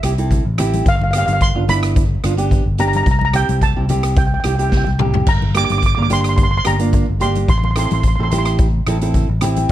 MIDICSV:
0, 0, Header, 1, 5, 480
1, 0, Start_track
1, 0, Tempo, 552995
1, 744, Time_signature, 4, 2, 24, 8
1, 8434, End_track
2, 0, Start_track
2, 0, Title_t, "Steel pan"
2, 0, Program_c, 0, 114
2, 0, Note_on_c, 0, 76, 88
2, 473, Note_off_c, 0, 76, 0
2, 768, Note_on_c, 0, 77, 105
2, 820, Note_off_c, 0, 77, 0
2, 830, Note_on_c, 0, 77, 72
2, 890, Note_off_c, 0, 77, 0
2, 899, Note_on_c, 0, 77, 82
2, 952, Note_off_c, 0, 77, 0
2, 962, Note_on_c, 0, 77, 76
2, 1016, Note_off_c, 0, 77, 0
2, 1026, Note_on_c, 0, 77, 91
2, 1083, Note_off_c, 0, 77, 0
2, 1093, Note_on_c, 0, 77, 82
2, 1145, Note_off_c, 0, 77, 0
2, 1155, Note_on_c, 0, 77, 87
2, 1209, Note_off_c, 0, 77, 0
2, 1232, Note_on_c, 0, 84, 123
2, 1471, Note_on_c, 0, 83, 107
2, 1475, Note_off_c, 0, 84, 0
2, 2430, Note_on_c, 0, 82, 97
2, 2455, Note_off_c, 0, 83, 0
2, 2488, Note_off_c, 0, 82, 0
2, 2499, Note_on_c, 0, 82, 82
2, 2564, Note_off_c, 0, 82, 0
2, 2574, Note_on_c, 0, 82, 88
2, 2621, Note_off_c, 0, 82, 0
2, 2631, Note_on_c, 0, 82, 76
2, 2690, Note_off_c, 0, 82, 0
2, 2702, Note_on_c, 0, 82, 81
2, 2757, Note_off_c, 0, 82, 0
2, 2768, Note_on_c, 0, 82, 74
2, 2809, Note_off_c, 0, 82, 0
2, 2820, Note_on_c, 0, 82, 91
2, 2881, Note_off_c, 0, 82, 0
2, 2915, Note_on_c, 0, 79, 99
2, 3020, Note_off_c, 0, 79, 0
2, 3149, Note_on_c, 0, 81, 105
2, 3625, Note_on_c, 0, 79, 85
2, 3640, Note_off_c, 0, 81, 0
2, 3688, Note_off_c, 0, 79, 0
2, 3705, Note_on_c, 0, 79, 56
2, 3757, Note_off_c, 0, 79, 0
2, 3767, Note_on_c, 0, 79, 65
2, 3809, Note_off_c, 0, 79, 0
2, 3819, Note_on_c, 0, 79, 54
2, 3874, Note_off_c, 0, 79, 0
2, 3885, Note_on_c, 0, 79, 55
2, 3942, Note_off_c, 0, 79, 0
2, 3952, Note_on_c, 0, 79, 51
2, 4009, Note_off_c, 0, 79, 0
2, 4019, Note_on_c, 0, 79, 58
2, 4066, Note_off_c, 0, 79, 0
2, 4076, Note_on_c, 0, 79, 57
2, 4133, Note_off_c, 0, 79, 0
2, 4143, Note_on_c, 0, 79, 65
2, 4195, Note_off_c, 0, 79, 0
2, 4205, Note_on_c, 0, 79, 59
2, 4267, Note_off_c, 0, 79, 0
2, 4588, Note_on_c, 0, 82, 101
2, 4833, Note_off_c, 0, 82, 0
2, 4837, Note_on_c, 0, 86, 126
2, 4890, Note_off_c, 0, 86, 0
2, 4900, Note_on_c, 0, 86, 90
2, 4954, Note_off_c, 0, 86, 0
2, 4964, Note_on_c, 0, 86, 91
2, 5008, Note_off_c, 0, 86, 0
2, 5019, Note_on_c, 0, 86, 81
2, 5078, Note_off_c, 0, 86, 0
2, 5088, Note_on_c, 0, 86, 95
2, 5153, Note_off_c, 0, 86, 0
2, 5163, Note_on_c, 0, 86, 83
2, 5219, Note_off_c, 0, 86, 0
2, 5230, Note_on_c, 0, 86, 91
2, 5286, Note_off_c, 0, 86, 0
2, 5319, Note_on_c, 0, 84, 101
2, 5379, Note_off_c, 0, 84, 0
2, 5389, Note_on_c, 0, 84, 70
2, 5450, Note_off_c, 0, 84, 0
2, 5460, Note_on_c, 0, 84, 79
2, 5512, Note_off_c, 0, 84, 0
2, 5524, Note_on_c, 0, 84, 71
2, 5573, Note_off_c, 0, 84, 0
2, 5584, Note_on_c, 0, 84, 82
2, 5641, Note_off_c, 0, 84, 0
2, 5651, Note_on_c, 0, 84, 75
2, 5697, Note_off_c, 0, 84, 0
2, 5707, Note_on_c, 0, 84, 89
2, 5765, Note_off_c, 0, 84, 0
2, 5790, Note_on_c, 0, 82, 94
2, 6263, Note_on_c, 0, 84, 96
2, 6281, Note_off_c, 0, 82, 0
2, 6496, Note_off_c, 0, 84, 0
2, 6506, Note_on_c, 0, 84, 90
2, 6567, Note_off_c, 0, 84, 0
2, 6577, Note_on_c, 0, 84, 65
2, 6628, Note_off_c, 0, 84, 0
2, 6638, Note_on_c, 0, 84, 70
2, 6681, Note_off_c, 0, 84, 0
2, 6691, Note_on_c, 0, 84, 62
2, 6752, Note_off_c, 0, 84, 0
2, 6762, Note_on_c, 0, 84, 76
2, 6808, Note_off_c, 0, 84, 0
2, 6819, Note_on_c, 0, 84, 65
2, 6879, Note_off_c, 0, 84, 0
2, 6889, Note_on_c, 0, 84, 63
2, 6937, Note_off_c, 0, 84, 0
2, 6947, Note_on_c, 0, 84, 57
2, 7001, Note_off_c, 0, 84, 0
2, 7011, Note_on_c, 0, 84, 64
2, 7070, Note_off_c, 0, 84, 0
2, 7080, Note_on_c, 0, 84, 60
2, 7134, Note_off_c, 0, 84, 0
2, 7145, Note_on_c, 0, 84, 71
2, 7201, Note_off_c, 0, 84, 0
2, 7212, Note_on_c, 0, 84, 64
2, 7267, Note_off_c, 0, 84, 0
2, 7277, Note_on_c, 0, 84, 75
2, 7329, Note_off_c, 0, 84, 0
2, 7340, Note_on_c, 0, 84, 64
2, 7403, Note_off_c, 0, 84, 0
2, 8434, End_track
3, 0, Start_track
3, 0, Title_t, "Nylon-string guitar"
3, 0, Program_c, 1, 24
3, 33, Note_on_c, 1, 60, 83
3, 35, Note_on_c, 1, 64, 72
3, 39, Note_on_c, 1, 67, 86
3, 106, Note_off_c, 1, 60, 0
3, 106, Note_off_c, 1, 64, 0
3, 106, Note_off_c, 1, 67, 0
3, 156, Note_on_c, 1, 60, 84
3, 162, Note_on_c, 1, 64, 73
3, 165, Note_on_c, 1, 69, 88
3, 368, Note_off_c, 1, 60, 0
3, 371, Note_off_c, 1, 64, 0
3, 372, Note_off_c, 1, 69, 0
3, 504, Note_on_c, 1, 60, 99
3, 507, Note_on_c, 1, 64, 88
3, 509, Note_on_c, 1, 67, 108
3, 744, Note_off_c, 1, 60, 0
3, 745, Note_off_c, 1, 64, 0
3, 745, Note_off_c, 1, 67, 0
3, 994, Note_on_c, 1, 59, 71
3, 998, Note_on_c, 1, 62, 68
3, 1002, Note_on_c, 1, 67, 81
3, 1206, Note_off_c, 1, 59, 0
3, 1208, Note_off_c, 1, 62, 0
3, 1209, Note_off_c, 1, 67, 0
3, 1345, Note_on_c, 1, 59, 74
3, 1349, Note_on_c, 1, 62, 70
3, 1350, Note_on_c, 1, 65, 76
3, 1416, Note_off_c, 1, 59, 0
3, 1416, Note_off_c, 1, 62, 0
3, 1418, Note_off_c, 1, 65, 0
3, 1458, Note_on_c, 1, 59, 77
3, 1466, Note_on_c, 1, 62, 71
3, 1469, Note_on_c, 1, 64, 90
3, 1751, Note_off_c, 1, 59, 0
3, 1756, Note_off_c, 1, 62, 0
3, 1756, Note_off_c, 1, 64, 0
3, 1942, Note_on_c, 1, 59, 77
3, 1947, Note_on_c, 1, 62, 65
3, 1956, Note_on_c, 1, 65, 80
3, 2019, Note_off_c, 1, 59, 0
3, 2021, Note_off_c, 1, 62, 0
3, 2026, Note_off_c, 1, 65, 0
3, 2059, Note_on_c, 1, 59, 94
3, 2062, Note_on_c, 1, 62, 82
3, 2067, Note_on_c, 1, 67, 99
3, 2280, Note_off_c, 1, 59, 0
3, 2280, Note_off_c, 1, 62, 0
3, 2283, Note_off_c, 1, 67, 0
3, 2417, Note_on_c, 1, 59, 73
3, 2422, Note_on_c, 1, 62, 72
3, 2425, Note_on_c, 1, 67, 85
3, 2660, Note_off_c, 1, 59, 0
3, 2661, Note_off_c, 1, 62, 0
3, 2664, Note_off_c, 1, 67, 0
3, 2891, Note_on_c, 1, 60, 68
3, 2895, Note_on_c, 1, 64, 67
3, 2900, Note_on_c, 1, 67, 74
3, 3114, Note_off_c, 1, 60, 0
3, 3116, Note_off_c, 1, 64, 0
3, 3118, Note_off_c, 1, 67, 0
3, 3265, Note_on_c, 1, 60, 75
3, 3269, Note_on_c, 1, 64, 68
3, 3269, Note_on_c, 1, 67, 81
3, 3335, Note_off_c, 1, 60, 0
3, 3336, Note_off_c, 1, 67, 0
3, 3337, Note_off_c, 1, 64, 0
3, 3374, Note_on_c, 1, 60, 77
3, 3374, Note_on_c, 1, 64, 69
3, 3381, Note_on_c, 1, 67, 92
3, 3668, Note_off_c, 1, 64, 0
3, 3669, Note_off_c, 1, 60, 0
3, 3673, Note_off_c, 1, 67, 0
3, 3851, Note_on_c, 1, 60, 74
3, 3855, Note_on_c, 1, 64, 67
3, 3861, Note_on_c, 1, 67, 82
3, 3933, Note_off_c, 1, 60, 0
3, 3936, Note_off_c, 1, 64, 0
3, 3937, Note_off_c, 1, 67, 0
3, 3977, Note_on_c, 1, 60, 74
3, 3983, Note_on_c, 1, 64, 71
3, 3985, Note_on_c, 1, 67, 83
3, 4199, Note_off_c, 1, 60, 0
3, 4200, Note_off_c, 1, 64, 0
3, 4202, Note_off_c, 1, 67, 0
3, 4334, Note_on_c, 1, 60, 78
3, 4338, Note_on_c, 1, 64, 71
3, 4338, Note_on_c, 1, 67, 86
3, 4578, Note_off_c, 1, 60, 0
3, 4580, Note_off_c, 1, 64, 0
3, 4580, Note_off_c, 1, 67, 0
3, 4811, Note_on_c, 1, 58, 72
3, 4819, Note_on_c, 1, 62, 63
3, 4824, Note_on_c, 1, 67, 74
3, 5035, Note_off_c, 1, 58, 0
3, 5039, Note_off_c, 1, 62, 0
3, 5040, Note_off_c, 1, 67, 0
3, 5180, Note_on_c, 1, 58, 76
3, 5186, Note_on_c, 1, 62, 68
3, 5189, Note_on_c, 1, 70, 82
3, 5253, Note_off_c, 1, 58, 0
3, 5255, Note_off_c, 1, 62, 0
3, 5257, Note_off_c, 1, 70, 0
3, 5292, Note_on_c, 1, 58, 78
3, 5295, Note_on_c, 1, 62, 72
3, 5297, Note_on_c, 1, 67, 92
3, 5589, Note_off_c, 1, 58, 0
3, 5589, Note_off_c, 1, 62, 0
3, 5590, Note_off_c, 1, 67, 0
3, 5766, Note_on_c, 1, 58, 77
3, 5769, Note_on_c, 1, 62, 70
3, 5775, Note_on_c, 1, 67, 82
3, 5851, Note_off_c, 1, 58, 0
3, 5851, Note_off_c, 1, 62, 0
3, 5855, Note_off_c, 1, 67, 0
3, 5895, Note_on_c, 1, 58, 84
3, 5899, Note_on_c, 1, 62, 75
3, 5904, Note_on_c, 1, 65, 83
3, 6117, Note_off_c, 1, 58, 0
3, 6120, Note_off_c, 1, 62, 0
3, 6121, Note_off_c, 1, 65, 0
3, 6249, Note_on_c, 1, 58, 78
3, 6251, Note_on_c, 1, 62, 71
3, 6257, Note_on_c, 1, 67, 85
3, 6497, Note_off_c, 1, 58, 0
3, 6497, Note_off_c, 1, 62, 0
3, 6501, Note_off_c, 1, 67, 0
3, 6733, Note_on_c, 1, 60, 76
3, 6738, Note_on_c, 1, 64, 64
3, 6744, Note_on_c, 1, 69, 80
3, 6956, Note_off_c, 1, 60, 0
3, 6959, Note_off_c, 1, 64, 0
3, 6960, Note_off_c, 1, 69, 0
3, 7108, Note_on_c, 1, 60, 70
3, 7114, Note_on_c, 1, 64, 64
3, 7120, Note_on_c, 1, 69, 85
3, 7178, Note_off_c, 1, 60, 0
3, 7181, Note_off_c, 1, 64, 0
3, 7184, Note_off_c, 1, 69, 0
3, 7227, Note_on_c, 1, 60, 79
3, 7233, Note_on_c, 1, 67, 93
3, 7234, Note_on_c, 1, 64, 76
3, 7517, Note_off_c, 1, 60, 0
3, 7520, Note_off_c, 1, 64, 0
3, 7520, Note_off_c, 1, 67, 0
3, 7702, Note_on_c, 1, 60, 94
3, 7707, Note_on_c, 1, 64, 86
3, 7708, Note_on_c, 1, 69, 106
3, 7781, Note_off_c, 1, 60, 0
3, 7781, Note_off_c, 1, 64, 0
3, 7783, Note_off_c, 1, 69, 0
3, 7826, Note_on_c, 1, 60, 101
3, 7832, Note_on_c, 1, 64, 85
3, 7835, Note_on_c, 1, 69, 102
3, 8044, Note_off_c, 1, 60, 0
3, 8047, Note_off_c, 1, 69, 0
3, 8048, Note_off_c, 1, 64, 0
3, 8170, Note_on_c, 1, 60, 96
3, 8174, Note_on_c, 1, 64, 91
3, 8174, Note_on_c, 1, 67, 109
3, 8419, Note_off_c, 1, 60, 0
3, 8419, Note_off_c, 1, 64, 0
3, 8420, Note_off_c, 1, 67, 0
3, 8434, End_track
4, 0, Start_track
4, 0, Title_t, "Fingered electric bass"
4, 0, Program_c, 2, 33
4, 28, Note_on_c, 2, 36, 99
4, 347, Note_off_c, 2, 36, 0
4, 391, Note_on_c, 2, 33, 100
4, 699, Note_off_c, 2, 33, 0
4, 745, Note_on_c, 2, 31, 111
4, 1065, Note_off_c, 2, 31, 0
4, 1105, Note_on_c, 2, 31, 111
4, 1317, Note_off_c, 2, 31, 0
4, 1343, Note_on_c, 2, 31, 90
4, 1864, Note_off_c, 2, 31, 0
4, 1944, Note_on_c, 2, 31, 91
4, 2263, Note_off_c, 2, 31, 0
4, 2307, Note_on_c, 2, 31, 97
4, 2616, Note_off_c, 2, 31, 0
4, 2657, Note_on_c, 2, 36, 105
4, 2980, Note_off_c, 2, 36, 0
4, 3031, Note_on_c, 2, 36, 105
4, 3240, Note_off_c, 2, 36, 0
4, 3274, Note_on_c, 2, 36, 86
4, 3790, Note_off_c, 2, 36, 0
4, 3868, Note_on_c, 2, 36, 92
4, 4186, Note_off_c, 2, 36, 0
4, 4235, Note_on_c, 2, 36, 105
4, 4541, Note_off_c, 2, 36, 0
4, 4574, Note_on_c, 2, 31, 106
4, 4898, Note_off_c, 2, 31, 0
4, 4950, Note_on_c, 2, 31, 106
4, 5160, Note_off_c, 2, 31, 0
4, 5192, Note_on_c, 2, 31, 87
4, 5709, Note_off_c, 2, 31, 0
4, 5787, Note_on_c, 2, 31, 97
4, 6106, Note_off_c, 2, 31, 0
4, 6153, Note_on_c, 2, 31, 98
4, 6460, Note_off_c, 2, 31, 0
4, 6497, Note_on_c, 2, 33, 107
4, 6821, Note_off_c, 2, 33, 0
4, 6867, Note_on_c, 2, 33, 106
4, 7079, Note_off_c, 2, 33, 0
4, 7111, Note_on_c, 2, 33, 90
4, 7630, Note_off_c, 2, 33, 0
4, 7699, Note_on_c, 2, 33, 106
4, 8023, Note_off_c, 2, 33, 0
4, 8062, Note_on_c, 2, 33, 104
4, 8375, Note_off_c, 2, 33, 0
4, 8434, End_track
5, 0, Start_track
5, 0, Title_t, "Drums"
5, 27, Note_on_c, 9, 37, 90
5, 27, Note_on_c, 9, 42, 91
5, 114, Note_off_c, 9, 37, 0
5, 114, Note_off_c, 9, 42, 0
5, 157, Note_on_c, 9, 42, 63
5, 244, Note_off_c, 9, 42, 0
5, 266, Note_on_c, 9, 36, 91
5, 271, Note_on_c, 9, 42, 65
5, 279, Note_on_c, 9, 64, 69
5, 353, Note_off_c, 9, 36, 0
5, 358, Note_off_c, 9, 42, 0
5, 366, Note_off_c, 9, 64, 0
5, 505, Note_on_c, 9, 37, 91
5, 505, Note_on_c, 9, 42, 97
5, 521, Note_on_c, 9, 64, 81
5, 592, Note_off_c, 9, 37, 0
5, 592, Note_off_c, 9, 42, 0
5, 608, Note_off_c, 9, 64, 0
5, 637, Note_on_c, 9, 42, 69
5, 644, Note_on_c, 9, 63, 78
5, 724, Note_off_c, 9, 42, 0
5, 731, Note_off_c, 9, 63, 0
5, 745, Note_on_c, 9, 36, 111
5, 745, Note_on_c, 9, 42, 67
5, 832, Note_off_c, 9, 36, 0
5, 832, Note_off_c, 9, 42, 0
5, 879, Note_on_c, 9, 63, 71
5, 966, Note_off_c, 9, 63, 0
5, 983, Note_on_c, 9, 37, 103
5, 983, Note_on_c, 9, 42, 96
5, 1070, Note_off_c, 9, 37, 0
5, 1070, Note_off_c, 9, 42, 0
5, 1107, Note_on_c, 9, 42, 62
5, 1117, Note_on_c, 9, 63, 72
5, 1194, Note_off_c, 9, 42, 0
5, 1203, Note_off_c, 9, 63, 0
5, 1220, Note_on_c, 9, 42, 66
5, 1223, Note_on_c, 9, 36, 86
5, 1307, Note_off_c, 9, 42, 0
5, 1309, Note_off_c, 9, 36, 0
5, 1466, Note_on_c, 9, 42, 98
5, 1466, Note_on_c, 9, 63, 73
5, 1466, Note_on_c, 9, 64, 82
5, 1553, Note_off_c, 9, 42, 0
5, 1553, Note_off_c, 9, 63, 0
5, 1553, Note_off_c, 9, 64, 0
5, 1587, Note_on_c, 9, 37, 85
5, 1587, Note_on_c, 9, 42, 65
5, 1674, Note_off_c, 9, 37, 0
5, 1674, Note_off_c, 9, 42, 0
5, 1702, Note_on_c, 9, 42, 64
5, 1703, Note_on_c, 9, 36, 116
5, 1789, Note_off_c, 9, 42, 0
5, 1790, Note_off_c, 9, 36, 0
5, 1942, Note_on_c, 9, 37, 90
5, 1942, Note_on_c, 9, 42, 91
5, 2029, Note_off_c, 9, 37, 0
5, 2029, Note_off_c, 9, 42, 0
5, 2067, Note_on_c, 9, 42, 69
5, 2154, Note_off_c, 9, 42, 0
5, 2180, Note_on_c, 9, 36, 97
5, 2184, Note_on_c, 9, 42, 65
5, 2186, Note_on_c, 9, 64, 65
5, 2267, Note_off_c, 9, 36, 0
5, 2271, Note_off_c, 9, 42, 0
5, 2272, Note_off_c, 9, 64, 0
5, 2416, Note_on_c, 9, 42, 90
5, 2432, Note_on_c, 9, 64, 71
5, 2502, Note_off_c, 9, 42, 0
5, 2519, Note_off_c, 9, 64, 0
5, 2543, Note_on_c, 9, 42, 63
5, 2561, Note_on_c, 9, 63, 72
5, 2630, Note_off_c, 9, 42, 0
5, 2648, Note_off_c, 9, 63, 0
5, 2658, Note_on_c, 9, 36, 111
5, 2658, Note_on_c, 9, 42, 60
5, 2744, Note_off_c, 9, 42, 0
5, 2745, Note_off_c, 9, 36, 0
5, 2789, Note_on_c, 9, 63, 66
5, 2876, Note_off_c, 9, 63, 0
5, 2895, Note_on_c, 9, 37, 93
5, 2895, Note_on_c, 9, 42, 88
5, 2902, Note_on_c, 9, 64, 63
5, 2982, Note_off_c, 9, 37, 0
5, 2982, Note_off_c, 9, 42, 0
5, 2989, Note_off_c, 9, 64, 0
5, 3027, Note_on_c, 9, 42, 59
5, 3031, Note_on_c, 9, 63, 70
5, 3113, Note_off_c, 9, 42, 0
5, 3118, Note_off_c, 9, 63, 0
5, 3137, Note_on_c, 9, 36, 88
5, 3138, Note_on_c, 9, 42, 63
5, 3224, Note_off_c, 9, 36, 0
5, 3224, Note_off_c, 9, 42, 0
5, 3375, Note_on_c, 9, 42, 91
5, 3387, Note_on_c, 9, 63, 76
5, 3387, Note_on_c, 9, 64, 73
5, 3462, Note_off_c, 9, 42, 0
5, 3474, Note_off_c, 9, 63, 0
5, 3474, Note_off_c, 9, 64, 0
5, 3500, Note_on_c, 9, 37, 88
5, 3500, Note_on_c, 9, 42, 66
5, 3587, Note_off_c, 9, 37, 0
5, 3587, Note_off_c, 9, 42, 0
5, 3613, Note_on_c, 9, 42, 66
5, 3616, Note_on_c, 9, 36, 124
5, 3700, Note_off_c, 9, 42, 0
5, 3703, Note_off_c, 9, 36, 0
5, 3852, Note_on_c, 9, 37, 91
5, 3852, Note_on_c, 9, 42, 81
5, 3939, Note_off_c, 9, 37, 0
5, 3939, Note_off_c, 9, 42, 0
5, 3985, Note_on_c, 9, 42, 62
5, 4072, Note_off_c, 9, 42, 0
5, 4096, Note_on_c, 9, 38, 66
5, 4097, Note_on_c, 9, 36, 87
5, 4103, Note_on_c, 9, 63, 53
5, 4183, Note_off_c, 9, 38, 0
5, 4184, Note_off_c, 9, 36, 0
5, 4190, Note_off_c, 9, 63, 0
5, 4225, Note_on_c, 9, 63, 63
5, 4312, Note_off_c, 9, 63, 0
5, 4332, Note_on_c, 9, 45, 103
5, 4347, Note_on_c, 9, 64, 79
5, 4419, Note_off_c, 9, 45, 0
5, 4433, Note_off_c, 9, 64, 0
5, 4459, Note_on_c, 9, 43, 97
5, 4471, Note_on_c, 9, 64, 79
5, 4546, Note_off_c, 9, 43, 0
5, 4558, Note_off_c, 9, 64, 0
5, 4570, Note_on_c, 9, 42, 70
5, 4570, Note_on_c, 9, 49, 81
5, 4573, Note_on_c, 9, 36, 116
5, 4657, Note_off_c, 9, 42, 0
5, 4657, Note_off_c, 9, 49, 0
5, 4660, Note_off_c, 9, 36, 0
5, 4706, Note_on_c, 9, 63, 72
5, 4793, Note_off_c, 9, 63, 0
5, 4814, Note_on_c, 9, 37, 98
5, 4814, Note_on_c, 9, 42, 99
5, 4901, Note_off_c, 9, 37, 0
5, 4901, Note_off_c, 9, 42, 0
5, 4943, Note_on_c, 9, 42, 64
5, 4950, Note_on_c, 9, 63, 76
5, 5029, Note_off_c, 9, 42, 0
5, 5036, Note_off_c, 9, 63, 0
5, 5055, Note_on_c, 9, 36, 87
5, 5057, Note_on_c, 9, 42, 66
5, 5142, Note_off_c, 9, 36, 0
5, 5143, Note_off_c, 9, 42, 0
5, 5293, Note_on_c, 9, 42, 96
5, 5301, Note_on_c, 9, 63, 69
5, 5301, Note_on_c, 9, 64, 75
5, 5380, Note_off_c, 9, 42, 0
5, 5388, Note_off_c, 9, 63, 0
5, 5388, Note_off_c, 9, 64, 0
5, 5419, Note_on_c, 9, 37, 86
5, 5419, Note_on_c, 9, 42, 68
5, 5506, Note_off_c, 9, 37, 0
5, 5506, Note_off_c, 9, 42, 0
5, 5533, Note_on_c, 9, 42, 67
5, 5535, Note_on_c, 9, 36, 112
5, 5619, Note_off_c, 9, 42, 0
5, 5622, Note_off_c, 9, 36, 0
5, 5771, Note_on_c, 9, 37, 93
5, 5771, Note_on_c, 9, 42, 90
5, 5857, Note_off_c, 9, 37, 0
5, 5857, Note_off_c, 9, 42, 0
5, 5898, Note_on_c, 9, 42, 68
5, 5985, Note_off_c, 9, 42, 0
5, 6014, Note_on_c, 9, 42, 65
5, 6016, Note_on_c, 9, 36, 93
5, 6024, Note_on_c, 9, 64, 67
5, 6101, Note_off_c, 9, 42, 0
5, 6102, Note_off_c, 9, 36, 0
5, 6111, Note_off_c, 9, 64, 0
5, 6255, Note_on_c, 9, 42, 95
5, 6272, Note_on_c, 9, 64, 78
5, 6342, Note_off_c, 9, 42, 0
5, 6359, Note_off_c, 9, 64, 0
5, 6382, Note_on_c, 9, 42, 62
5, 6393, Note_on_c, 9, 63, 72
5, 6469, Note_off_c, 9, 42, 0
5, 6480, Note_off_c, 9, 63, 0
5, 6497, Note_on_c, 9, 36, 115
5, 6499, Note_on_c, 9, 42, 60
5, 6583, Note_off_c, 9, 36, 0
5, 6586, Note_off_c, 9, 42, 0
5, 6628, Note_on_c, 9, 63, 71
5, 6714, Note_off_c, 9, 63, 0
5, 6733, Note_on_c, 9, 37, 93
5, 6733, Note_on_c, 9, 42, 98
5, 6820, Note_off_c, 9, 37, 0
5, 6820, Note_off_c, 9, 42, 0
5, 6862, Note_on_c, 9, 42, 61
5, 6874, Note_on_c, 9, 63, 80
5, 6949, Note_off_c, 9, 42, 0
5, 6960, Note_off_c, 9, 63, 0
5, 6972, Note_on_c, 9, 42, 64
5, 6974, Note_on_c, 9, 36, 90
5, 7059, Note_off_c, 9, 42, 0
5, 7061, Note_off_c, 9, 36, 0
5, 7216, Note_on_c, 9, 42, 84
5, 7228, Note_on_c, 9, 63, 75
5, 7228, Note_on_c, 9, 64, 76
5, 7303, Note_off_c, 9, 42, 0
5, 7315, Note_off_c, 9, 63, 0
5, 7315, Note_off_c, 9, 64, 0
5, 7339, Note_on_c, 9, 37, 84
5, 7339, Note_on_c, 9, 42, 66
5, 7425, Note_off_c, 9, 37, 0
5, 7425, Note_off_c, 9, 42, 0
5, 7451, Note_on_c, 9, 42, 68
5, 7455, Note_on_c, 9, 36, 116
5, 7538, Note_off_c, 9, 42, 0
5, 7542, Note_off_c, 9, 36, 0
5, 7696, Note_on_c, 9, 37, 93
5, 7696, Note_on_c, 9, 42, 89
5, 7782, Note_off_c, 9, 37, 0
5, 7782, Note_off_c, 9, 42, 0
5, 7825, Note_on_c, 9, 42, 67
5, 7911, Note_off_c, 9, 42, 0
5, 7934, Note_on_c, 9, 42, 67
5, 7935, Note_on_c, 9, 36, 91
5, 7954, Note_on_c, 9, 64, 68
5, 8021, Note_off_c, 9, 42, 0
5, 8022, Note_off_c, 9, 36, 0
5, 8041, Note_off_c, 9, 64, 0
5, 8168, Note_on_c, 9, 37, 88
5, 8168, Note_on_c, 9, 42, 104
5, 8195, Note_on_c, 9, 64, 81
5, 8255, Note_off_c, 9, 37, 0
5, 8255, Note_off_c, 9, 42, 0
5, 8282, Note_off_c, 9, 64, 0
5, 8301, Note_on_c, 9, 42, 69
5, 8311, Note_on_c, 9, 63, 76
5, 8387, Note_off_c, 9, 42, 0
5, 8398, Note_off_c, 9, 63, 0
5, 8434, End_track
0, 0, End_of_file